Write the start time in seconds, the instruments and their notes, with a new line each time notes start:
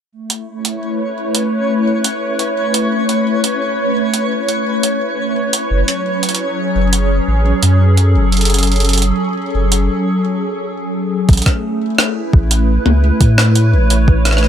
0.12 analog synth pad A3, synth texture C#4 C#5
0.27 analog synth pad E4, closed hi-hat
0.60 analog synth pad B4 C#5
0.65 closed hi-hat
1.35 closed hi-hat
2.04 closed hi-hat
2.39 closed hi-hat
2.74 closed hi-hat
3.09 closed hi-hat
3.44 closed hi-hat
4.14 closed hi-hat
4.49 closed hi-hat
4.83 closed hi-hat
5.53 closed hi-hat
5.71 sub bass F#1, analog synth pad F#3
5.88 closed hi-hat
6.20 analog synth pad C#4, closed hi-hat
6.29 analog synth pad G#4, closed hi-hat
6.35 closed hi-hat
6.75 sub bass F#1
6.93 closed hi-hat
7.28 sub bass A1
7.62 sub bass F#2, closed hi-hat
7.83 analog synth pad A4
7.97 closed hi-hat
8.15 sub bass F#1
8.32 closed hi-hat
8.37 closed hi-hat
8.41 closed hi-hat
8.45 closed hi-hat
8.50 closed hi-hat
8.54 closed hi-hat
8.59 closed hi-hat
8.63 closed hi-hat
8.67 closed hi-hat
8.72 closed hi-hat
8.76 closed hi-hat
8.80 closed hi-hat
8.85 closed hi-hat
8.89 closed hi-hat
8.93 closed hi-hat
8.98 closed hi-hat
9.02 closed hi-hat
9.54 sub bass F#1
9.72 closed hi-hat
11.29 sub bass A1, analog synth pad A3, kick, closed hi-hat
11.33 closed hi-hat
11.37 closed hi-hat
11.42 closed hi-hat
11.46 kick, cross-stick, closed hi-hat
11.63 analog synth pad E4
11.98 analog synth pad B4, cross-stick
12.33 sub bass A1, kick
12.51 closed hi-hat
12.86 sub bass C#2, high tom
13.21 sub bass A2, kick, closed hi-hat
13.32 analog synth pad C#5
13.38 cross-stick
13.55 closed hi-hat
13.73 sub bass A1
13.90 closed hi-hat
14.08 kick
14.25 cross-stick, closed hi-hat
14.31 cross-stick
14.37 cross-stick
14.43 cross-stick